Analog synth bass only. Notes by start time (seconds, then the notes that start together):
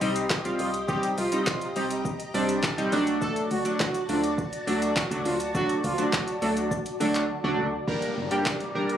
0.01 C2
0.45 C2
0.59 C2
1.18 C2
1.47 C2
1.76 C2
2.34 C2
2.78 C2
2.92 D2
3.51 D2
3.80 D2
4.09 D2
4.67 D2
5.11 D2
5.25 D2
5.84 D2
6.13 D2
6.42 D2
7.00 D2
7.44 D2
7.58 D2
8.17 G1
8.75 F1